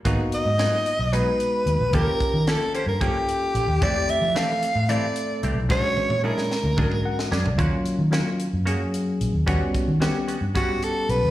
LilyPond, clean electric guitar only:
\new Staff \with { instrumentName = "Clean electric guitar" } { \time 7/8 \key dis \minor \tempo 4 = 111 <fis b dis' gis'>8 r8 <fis b dis' gis'>8 r8 <fis b dis' gis'>8 r4 | <eis ais cis' g'>8 r8 <eis ais cis' g'>8 <ais cis' g'>8 <eis ais cis' g'>8 r4 | <e a c' g'>8 r8 <e a c' g'>8 r8 <e a c' g'>8 r8 <e a c' g'>8 | <fis cis' d' gis'>8 r8 <fis cis' d' gis'>8 r8 <fis cis' d' gis'>8 r8 <fis cis' d' gis'>8 |
<ais cis' fis'>8 r8 <ais cis' fis'>8 r8 <ais cis' fis'>8 r4 | <g b cis' fis'>8 r8 <g b cis' fis'>8 <b cis' fis'>8 <g b cis' fis'>8 r4 | }